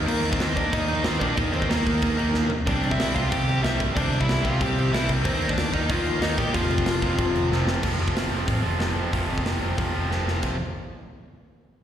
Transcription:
Already playing: distorted electric guitar D#3 A#3 D#4
0.08 picked electric bass D#2, overdriven electric guitar A#3 A#4, crash
0.23 picked electric bass D#2, crash
0.32 overdriven electric guitar C4 C5, kick
0.40 picked electric bass D#2, distorted electric guitar D#3 A#3 D#4, snare, crash
0.56 overdriven electric guitar D4 D5, kick, crash
0.72 picked electric bass D#2, overdriven electric guitar D#4 D#5, kick, crash
0.88 distorted electric guitar D#3 A#3 D#4, crash
1.04 picked electric bass D#2, overdriven electric guitar C4 C5, snare, crash
1.19 picked electric bass A#2, distorted electric guitar D#3 A#3 D#4, overdriven electric guitar D4 D5, kick, crash
1.37 picked electric bass D#2, overdriven electric guitar D#4 D#5, kick, crash
1.52 picked electric bass D#2, overdriven electric guitar C4 C5, crash
1.62 kick
1.68 picked electric bass D#2, distorted electric guitar D#3 A#3 D#4, overdriven electric guitar A#3 A#4, snare, crash
1.87 picked electric bass D#2, kick, crash
2.02 picked electric bass D#2, kick, crash
2.18 picked electric bass D#2, distorted electric guitar D#3 A#3 D#4, crash
2.34 picked electric bass D#2, snare
2.50 picked electric bass D#2, floor tom
2.66 picked electric bass C2, distorted electric guitar C3 G3 C4, overdriven electric guitar D4 D5, kick, crash
2.83 picked electric bass C2, crash
2.91 overdriven electric guitar E4 E5, kick
2.99 picked electric bass C2, snare, crash
3.15 distorted electric guitar C3 G3 C4, overdriven electric guitar F4 F5, kick, crash
3.31 picked electric bass C2, overdriven electric guitar G4 G5, kick, crash
3.49 crash
3.63 picked electric bass C2, distorted electric guitar C3 G3 C4, overdriven electric guitar E4 E5, snare, crash
3.80 picked electric bass G2, kick, crash
3.95 picked electric bass C2, distorted electric guitar C3 G3 C4, overdriven electric guitar D4 D5, kick, crash
4.11 picked electric bass C2, crash
4.21 overdriven electric guitar E4 E5, kick
4.28 picked electric bass C2, snare, crash
4.43 picked electric bass C2, distorted electric guitar C3 G3 C4, overdriven electric guitar F4 F5, kick, crash
4.61 picked electric bass C2, overdriven electric guitar G4 G5, kick, crash
4.76 picked electric bass C2, crash
4.91 picked electric bass C2, distorted electric guitar C3 G3 C4, overdriven electric guitar E4 E5, snare, crash
5.09 picked electric bass C2, kick, crash
5.23 picked electric bass D#2, distorted electric guitar D#3 A#3 D#4, overdriven electric guitar C4 C5, kick, crash
5.40 picked electric bass D#2, crash
5.49 overdriven electric guitar D4 D5, kick
5.56 picked electric bass D#2, snare, crash
5.72 distorted electric guitar D#3 A#3 D#4, overdriven electric guitar D#4 D#5, kick, crash
5.89 picked electric bass D#2, overdriven electric guitar F4 F5, kick, crash
6.06 crash
6.20 picked electric bass D#2, distorted electric guitar D#3 A#3 D#4, overdriven electric guitar D#4 D#5, snare, crash
6.38 picked electric bass A#2, overdriven electric guitar G4 G5, kick, crash
6.52 picked electric bass F1, distorted electric guitar F2 C3 F3, overdriven electric guitar F4 F5, kick, crash
6.70 picked electric bass F1, crash
6.78 kick
6.86 picked electric bass F1, snare, crash
7.02 picked electric bass F1, distorted electric guitar F2 C3 F3, kick, crash
7.18 picked electric bass F1, kick, crash
7.33 picked electric bass F1, crash
7.50 picked electric bass F1, distorted electric guitar F2 C3 F3, snare
7.66 picked electric bass F1, snare
7.82 picked electric bass F1, distorted electric guitar F2 C3 F3, kick, crash
7.99 picked electric bass F1, distorted electric guitar F2 C3 F3
8.08 kick
8.14 picked electric bass F1, distorted electric guitar F2 C3 F3, snare, open hi-hat
8.31 picked electric bass F1, distorted electric guitar F2 C3 F3
8.46 picked electric bass A1, distorted electric guitar F2 C3 F3, kick, open hi-hat
8.62 picked electric bass F1, distorted electric guitar F2 C3 F3
8.78 picked electric bass F1, distorted electric guitar F2 C3 F3, snare, open hi-hat
8.96 distorted electric guitar F2 C3 F3
9.11 picked electric bass F1, distorted electric guitar F2 C3 F3, kick, open hi-hat
9.28 picked electric bass F1, distorted electric guitar F2 C3 F3
9.38 kick
9.43 picked electric bass F1, distorted electric guitar F2 C3 F3, snare, open hi-hat
9.61 picked electric bass F1, distorted electric guitar F2 C3 F3
9.77 distorted electric guitar F2 C3 F3, picked electric bass F2, kick, open hi-hat
9.94 picked electric bass F1, distorted electric guitar F2 C3 F3
10.10 picked electric bass F1, distorted electric guitar F2 C3 F3, snare
10.25 picked electric bass F1, distorted electric guitar F2 C3 F3, snare
10.40 picked electric bass F1, distorted electric guitar F2 C3 F3, kick, crash

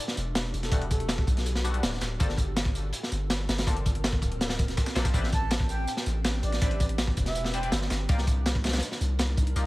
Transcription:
Already playing: ambient pad D4 F#4 G4 A4
0.08 snare
0.17 808-style bass E1, closed hi-hat, tambourine
0.35 snare, closed hi-hat, tambourine
0.54 808-style bass E1, closed hi-hat, tambourine
0.63 soft synth lead A4, snare, closed hi-hat
0.71 808-style bass E1, synth stab D3 G3 A3 B3 F#4, kick, closed hi-hat, tambourine
0.82 closed hi-hat
0.90 soft synth lead A4, kick, closed hi-hat, tambourine
1.00 closed hi-hat
1.09 snare, closed hi-hat, tambourine
1.18 kick
1.27 808-style bass B1, kick, closed hi-hat, tambourine
1.37 snare, closed hi-hat
1.46 closed hi-hat, tambourine
1.55 snare
1.64 synth stab D3 G3 A3 B3 F#4, closed hi-hat, tambourine
1.74 synth stab D3 G3 A3 B3 F#4, closed hi-hat
1.83 808-style bass D1, snare, closed hi-hat, tambourine
1.93 snare
2.01 808-style bass D1, snare, closed hi-hat, tambourine
2.20 808-style bass G1, synth stab F3 A#3 C4 D4 A4, ambient pad C4 F4 A#4, kick, closed hi-hat, tambourine
2.29 snare
2.38 kick, closed hi-hat, tambourine
2.56 snare, closed hi-hat, tambourine
2.65 kick
2.75 closed hi-hat, tambourine
2.93 closed hi-hat, tambourine
3.03 snare
3.12 808-style bass G1, closed hi-hat, tambourine
3.30 snare, closed hi-hat, tambourine
3.49 808-style bass G1, snare, closed hi-hat, tambourine
3.58 snare, closed hi-hat
3.67 808-style bass G1, synth stab F3 A#3 C4 D4 A4, kick, closed hi-hat, tambourine
3.77 closed hi-hat
3.86 kick, closed hi-hat, tambourine
3.95 closed hi-hat
4.04 snare, closed hi-hat, tambourine
4.13 kick
4.22 808-style bass D1, kick, closed hi-hat, tambourine
4.32 closed hi-hat
4.41 snare, closed hi-hat, tambourine
4.49 snare, closed hi-hat
4.59 kick, closed hi-hat, tambourine
4.68 snare, closed hi-hat
4.77 kick, snare, closed hi-hat, tambourine
4.86 snare, tambourine
4.95 808-style bass A#1, synth stab F3 A#3 C4 D4 A4, snare, closed hi-hat, tambourine
5.05 kick, snare, closed hi-hat, tambourine
5.14 808-style bass A1, synth stab G3 C4 D4 E4 B4, ambient pad D4 G4 B4, kick, closed hi-hat, tambourine
5.24 snare
5.32 soft synth lead A5, kick, closed hi-hat, tambourine
5.51 snare, closed hi-hat, tambourine
5.60 kick
5.69 soft synth lead G5, closed hi-hat, tambourine
5.87 closed hi-hat, tambourine
5.97 snare
6.06 808-style bass A1, closed hi-hat, tambourine
6.25 snare, closed hi-hat, tambourine
6.43 808-style bass A1, soft synth lead D5, closed hi-hat, tambourine
6.52 snare, closed hi-hat
6.62 808-style bass A1, synth stab G3 C4 D4 E4 B4, soft synth lead D5, kick, closed hi-hat, tambourine
6.71 closed hi-hat
6.80 kick, closed hi-hat, tambourine
6.89 closed hi-hat
6.98 snare, closed hi-hat, tambourine
7.07 kick
7.17 808-style bass E1, kick, closed hi-hat, tambourine
7.26 soft synth lead E5, snare, closed hi-hat
7.35 closed hi-hat, tambourine
7.44 snare
7.54 synth stab G3 C4 D4 E4 B4, soft synth lead G5, closed hi-hat, tambourine
7.63 synth stab G3 C4 D4 E4 B4, soft synth lead G5, closed hi-hat
7.72 808-style bass G1, snare, closed hi-hat, tambourine
7.81 snare
7.90 808-style bass G1, snare, closed hi-hat, tambourine
8.09 808-style bass C2, synth stab A#3 D#4 F4 G4 D5, ambient pad D4 D#4 F4 A#4, kick, closed hi-hat, tambourine
8.18 snare
8.27 kick, closed hi-hat, tambourine
8.46 snare, closed hi-hat, tambourine
8.55 kick
8.64 snare, closed hi-hat, tambourine
8.68 snare, closed hi-hat
8.73 snare, closed hi-hat, tambourine
8.78 snare, closed hi-hat
8.83 closed hi-hat, tambourine
8.92 snare
9.01 808-style bass C2, closed hi-hat, tambourine
9.19 snare, closed hi-hat, tambourine
9.37 808-style bass C2, kick, closed hi-hat, tambourine
9.47 closed hi-hat
9.56 808-style bass C2, synth stab A#3 D#4 F4 G4 D5, closed hi-hat, tambourine

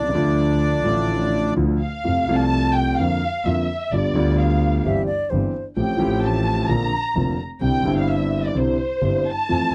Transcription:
Already playing: double bass C2, bandoneon D4 D5
0.03 grand piano C2
0.09 grand piano C#2
0.15 grand piano D2 D3 F3 A3 F4, double bass D2
0.83 double bass A1, grand piano A1 A2 D3 F3 A3 F4
1.56 double bass D2, grand piano D2 D3 F3 A3 F4
1.80 violin section F5
2.05 double bass F2, grand piano F2 C3 F3 A3 F4
2.27 double bass C2, grand piano C2 C3 F3 A3 F4
2.39 violin section A5
2.75 violin section G5
2.99 double bass F2, grand piano F2 D3 F3 A#3 C4 F4, violin section F5
3.45 double bass F2, grand piano F2 D3 F3 A#3 C4 F4, violin section E5
3.91 double bass G1, grand piano G1 G2 D3 G3 B3 F4, violin section D5
4.15 double bass D2, grand piano D2 D3 G3 B3 F4
4.39 violin section F5
4.85 double bass G1, grand piano G1 G2 E3 G3 C4 G4, flute E5
5.06 flute D5
5.30 grand piano G1 G2 E3 G3 C4 G4, double bass G1, flute C5
5.76 grand piano A1 A2 F3 A3 C4 G4, double bass A1, violin section G5
5.97 grand piano A1 A2 F3 A3 C4 G4, double bass A1
6.24 violin section A5
6.69 grand piano A#1 A#2 D3 A#3 C4 F4, double bass A#1, violin section A#5
7.15 double bass F1, grand piano F1 F2 D3 A#3 C4 F4
7.61 double bass C2, grand piano C2 C3 D3 G3 C4 E4, violin section G5
7.83 double bass G1, grand piano G1 G2 D3 G3 C4 E4
7.99 violin section F5
8.10 violin section E5
8.45 violin section D5
8.55 double bass C2, grand piano C2 C3 D3 G3 C4 E4, violin section C5
9.02 grand piano G1 G2 D3 G3 C4 E4, double bass G1
9.29 violin section A5
9.49 grand piano F2 E3 F3 A3 C4 F4, double bass F2
9.71 grand piano E4

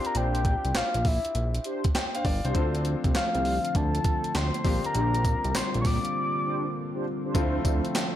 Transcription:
Already playing: grand piano C4 D4 F4 G4
0.05 soft synth lead A#5, closed hi-hat
0.15 analog synth bass A#1, analog polysynth D4 G4 C5, soft synth lead G5, closed hi-hat
0.35 closed hi-hat
0.45 kick, closed hi-hat
0.65 analog synth bass C2, closed hi-hat
0.75 analog synth bass A#1, soft synth lead F5, snare, clap, closed hi-hat
0.94 analog synth bass A#1, closed hi-hat
1.05 soft synth lead E5, kick, open hi-hat
1.25 closed hi-hat
1.35 analog synth bass A#1, closed hi-hat
1.55 closed hi-hat
1.64 analog polysynth D4 G4 C5, closed hi-hat
1.84 kick, closed hi-hat
1.95 grand piano G5, snare, clap, closed hi-hat
2.14 analog polysynth D4 G4 C5, grand piano F5, closed hi-hat
2.25 analog synth bass G1, grand piano D5, kick, open hi-hat
2.44 analog synth bass C2, analog polysynth D4 G4 C5, grand piano C5, closed hi-hat
2.54 analog synth bass D2, analog synth pad D3 F3 A3 C4 F4, grand piano C4 D4 F4 A4, analog polysynth D4 F4 C5, kick, closed hi-hat
2.75 closed hi-hat
2.85 closed hi-hat
3.04 analog synth bass C2, kick, closed hi-hat
3.15 analog synth bass C2, soft synth lead F5, snare, clap, closed hi-hat
3.35 analog synth bass C2, closed hi-hat
3.45 open hi-hat
3.65 closed hi-hat
3.75 analog synth bass D2, soft synth lead A5, kick, closed hi-hat
3.95 closed hi-hat
4.04 kick, closed hi-hat
4.24 closed hi-hat
4.35 analog synth bass D2, soft synth lead C6, snare, clap, closed hi-hat
4.54 closed hi-hat
4.64 analog synth bass A#1, analog synth pad G3 A#3 C4 F4, grand piano C4 D4 F4 G4, kick, open hi-hat
4.84 soft synth lead A#5, closed hi-hat
4.94 analog synth bass A#1, analog polysynth D4 G4 C5, closed hi-hat
5.15 closed hi-hat
5.25 kick, closed hi-hat, tambourine
5.44 analog synth bass C2, closed hi-hat
5.55 analog synth bass A#1, soft synth lead C6, snare, clap, closed hi-hat, tambourine
5.74 analog synth bass A#1, closed hi-hat
5.81 soft synth lead C#6, kick, snare, open hi-hat, tambourine
5.86 soft synth lead D6
6.05 closed hi-hat
6.44 analog polysynth D4 G4 C5
6.94 analog polysynth D4 G4 C5
7.24 analog polysynth D4 G4 C5
7.34 analog synth bass D2, analog synth pad D3 F3 A3 C4 D4, grand piano A3 C4 E4 F4, analog polysynth D4 F4 C5, kick, closed hi-hat, tambourine
7.64 analog synth bass D2, analog polysynth D4 F4 C5, kick, closed hi-hat, tambourine
7.85 closed hi-hat
7.95 snare, clap, closed hi-hat, tambourine

